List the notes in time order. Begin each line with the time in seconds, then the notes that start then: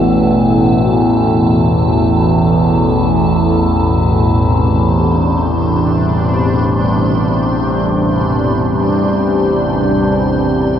Already playing: A1 E2 A2 B2 E3 A4
4.40 C3 C5
4.99 D4
5.87 G3